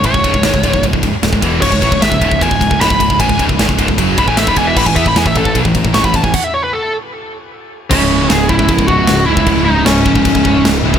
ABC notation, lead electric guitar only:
X:1
M:4/4
L:1/16
Q:1/4=153
K:C#m
V:1 name="Lead electric guitar"
c8 z8 | c4 e4 g4 b4 | g2 z8 b g e b g e | b g e b g e A2 z4 c' b a g |
f e c B A2 z8 z2 | C4 G2 E4 F4 E2- | E2 D2 C8 z4 |]